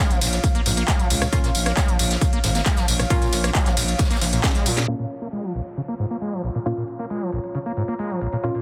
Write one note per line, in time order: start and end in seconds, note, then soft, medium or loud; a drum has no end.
0.00 0.12 G#3 loud
0.00 1.30 A#3 medium
0.00 1.30 C#4 medium
0.00 1.30 F4 loud
0.00 4.87 F4 medium
0.00 4.88 C#5 medium
0.00 4.90 F5 medium
0.00 snare loud
0.00 closed hi-hat medium
0.11 0.19 A#1 medium
0.11 0.20 F3 medium
0.11 closed hi-hat medium
0.11 tambourine soft
0.21 0.39 A#1 medium
0.21 0.28 A#1 medium
0.21 closed hi-hat medium
0.21 open hi-hat loud
0.21 ride medium
0.21 tambourine medium
0.32 snare soft
0.32 closed hi-hat medium
0.32 tambourine soft
0.44 0.47 C#3 medium
0.44 kick loud
0.44 closed hi-hat medium
0.44 tambourine soft
0.55 0.61 A#3 medium
0.55 closed hi-hat medium
0.66 0.83 A#1 medium
0.66 0.72 G#2 medium
0.66 snare medium
0.66 closed hi-hat medium
0.66 open hi-hat loud
0.66 ride medium
0.66 tambourine medium
0.77 0.83 A#3 loud
0.77 closed hi-hat medium
0.77 tambourine soft
0.88 1.01 G#3 loud
0.88 kick loud
0.88 snare loud
0.88 clap loud
0.88 closed hi-hat medium
0.88 tambourine soft
0.99 1.08 F3 medium
0.99 closed hi-hat medium
0.99 tambourine soft
1.10 1.17 A#1 medium
1.10 1.28 C#2 medium
1.10 closed hi-hat medium
1.10 open hi-hat loud
1.10 ride medium
1.10 tambourine medium
1.22 1.25 A#2 medium
1.22 cross-stick loud
1.22 closed hi-hat soft
1.22 tambourine soft
1.33 1.39 A#2 loud
1.33 1.49 A#3 medium
1.33 1.49 C#4 medium
1.33 1.49 F4 medium
1.33 kick loud
1.33 closed hi-hat loud
1.33 closed hi-hat medium
1.33 tambourine soft
1.44 1.50 A#2 medium
1.44 snare soft
1.44 closed hi-hat medium
1.44 tambourine soft
1.55 1.72 A#1 loud
1.55 closed hi-hat medium
1.55 open hi-hat loud
1.55 ride medium
1.55 tambourine medium
1.66 1.72 A#3 loud
1.66 cross-stick medium
1.66 closed hi-hat medium
1.66 tambourine soft
1.77 1.90 G#3 loud
1.77 kick loud
1.77 snare loud
1.77 clap loud
1.77 closed hi-hat medium
1.77 tambourine soft
1.88 1.97 A#1 loud
1.88 1.97 F3 medium
1.88 closed hi-hat medium
1.88 tambourine soft
1.99 2.17 A#1 medium
1.99 2.05 A#1 medium
1.99 closed hi-hat medium
1.99 open hi-hat loud
1.99 ride medium
1.99 tambourine medium
2.11 snare medium
2.11 closed hi-hat medium
2.11 tambourine soft
2.21 2.25 C#3 medium
2.21 kick loud
2.21 closed hi-hat medium
2.21 tambourine soft
2.33 2.39 A#3 medium
2.33 closed hi-hat soft
2.44 2.61 G#1 loud
2.44 2.50 G#2 medium
2.44 snare loud
2.44 closed hi-hat medium
2.44 open hi-hat loud
2.44 ride medium
2.44 tambourine medium
2.54 2.61 A#3 loud
2.54 snare loud
2.54 closed hi-hat medium
2.54 tambourine soft
2.65 2.79 G#3 loud
2.65 kick loud
2.65 snare loud
2.65 clap loud
2.65 closed hi-hat medium
2.65 tambourine soft
2.76 2.86 F3 medium
2.76 snare loud
2.76 closed hi-hat medium
2.76 tambourine soft
2.88 3.06 A#1 medium
2.88 2.94 A#1 medium
2.88 closed hi-hat medium
2.88 open hi-hat loud
2.88 ride medium
2.88 tambourine medium
2.99 3.03 A#2 medium
2.99 cross-stick medium
2.99 closed hi-hat medium
2.99 tambourine soft
3.10 3.17 A#2 loud
3.10 4.85 A#3 medium
3.10 4.86 C#4 medium
3.10 4.85 F4 loud
3.10 kick loud
3.10 closed hi-hat loud
3.10 open hi-hat medium
3.10 tambourine soft
3.22 3.28 A#2 medium
3.22 closed hi-hat medium
3.22 tambourine soft
3.32 3.50 A#1 medium
3.32 snare loud
3.32 closed hi-hat medium
3.32 open hi-hat loud
3.32 ride medium
3.32 tambourine medium
3.44 3.50 A#3 loud
3.44 cross-stick medium
3.44 closed hi-hat medium
3.44 tambourine soft
3.55 3.68 G#3 loud
3.55 kick loud
3.55 clap loud
3.55 closed hi-hat medium
3.55 tambourine soft
3.66 3.75 A#1 medium
3.66 3.75 F3 medium
3.66 snare soft
3.66 clap soft
3.66 closed hi-hat medium
3.66 tambourine soft
3.77 3.83 A#1 medium
3.77 3.95 A#1 medium
3.77 closed hi-hat medium
3.77 open hi-hat loud
3.77 ride medium
3.77 tambourine medium
3.88 closed hi-hat medium
3.88 tambourine soft
3.98 4.03 C#3 medium
3.98 kick loud
3.98 snare medium
3.98 closed hi-hat medium
3.98 closed hi-hat loud
3.98 tambourine soft
4.05 snare medium
4.05 closed hi-hat medium
4.10 4.17 A#3 medium
4.10 snare medium
4.10 closed hi-hat medium
4.10 tambourine soft
4.15 snare medium
4.15 closed hi-hat medium
4.21 4.39 A#1 loud
4.21 4.25 F3 loud
4.21 snare medium
4.21 closed hi-hat medium
4.21 open hi-hat loud
4.21 ride medium
4.21 tambourine medium
4.33 4.42 A#2 medium
4.33 closed hi-hat medium
4.33 tambourine soft
4.43 4.47 A#2 medium
4.43 kick loud
4.43 snare loud
4.43 clap loud
4.43 closed hi-hat loud
4.43 tambourine soft
4.55 4.67 G#3 loud
4.55 closed hi-hat medium
4.55 tambourine soft
4.66 4.83 A#2 medium
4.66 4.72 F3 medium
4.66 closed hi-hat medium
4.66 open hi-hat loud
4.66 ride medium
4.66 tambourine medium
4.77 4.86 A#2 medium
4.77 snare medium
4.77 closed hi-hat soft
4.77 closed hi-hat medium
4.77 tambourine soft
4.88 4.94 A#2 loud
4.88 5.05 A#3 medium
4.88 5.05 C#4 medium
4.88 5.05 F4 medium
4.88 8.62 F4 medium
4.88 crash medium
4.88 downlifter medium
4.99 5.05 A#2 medium
5.05 8.62 A#5 medium
5.10 closed hi-hat medium
5.22 5.28 A#3 loud
5.22 closed hi-hat medium
5.30 5.45 G#3 medium
5.30 8.62 C#5 medium
5.30 closed hi-hat medium
5.44 5.53 F3 medium
5.44 closed hi-hat medium
5.55 5.61 A#1 medium
5.55 closed hi-hat medium
5.66 closed hi-hat medium
5.77 5.81 C#3 medium
5.77 closed hi-hat medium
5.88 5.94 A#3 medium
5.88 closed hi-hat medium
5.99 6.05 G#2 medium
5.99 closed hi-hat medium
6.11 6.17 A#3 loud
6.11 closed hi-hat medium
6.21 6.34 G#3 loud
6.21 closed hi-hat medium
6.33 6.42 F3 medium
6.33 closed hi-hat soft
6.44 6.50 A#1 medium
6.44 closed hi-hat medium
6.55 6.59 A#2 medium
6.55 closed hi-hat medium
6.66 6.72 A#2 loud
6.66 8.41 A#3 medium
6.66 8.41 C#4 medium
6.66 8.41 F4 medium
6.66 closed hi-hat loud
6.77 6.83 A#2 medium
6.77 closed hi-hat medium
6.88 closed hi-hat medium
6.99 7.05 A#3 loud
6.99 closed hi-hat medium
7.10 7.23 G#3 loud
7.10 closed hi-hat medium
7.22 7.31 F3 medium
7.22 closed hi-hat medium
7.33 7.39 A#1 medium
7.33 closed hi-hat medium
7.44 closed hi-hat medium
7.55 7.58 C#3 medium
7.55 closed hi-hat loud
7.66 7.72 A#3 medium
7.66 closed hi-hat medium
7.77 7.83 G#2 medium
7.77 closed hi-hat medium
7.88 7.94 A#3 loud
7.88 closed hi-hat medium
7.99 8.12 G#3 loud
7.99 closed hi-hat loud
8.10 8.20 F3 medium
8.10 closed hi-hat medium
8.21 8.28 A#1 medium
8.21 closed hi-hat medium
8.33 8.36 A#2 medium
8.33 closed hi-hat medium
8.44 8.50 A#2 loud
8.44 8.60 A#3 medium
8.44 8.60 C#4 medium
8.44 8.60 F4 medium
8.44 closed hi-hat medium
8.55 8.61 A#2 medium
8.55 closed hi-hat medium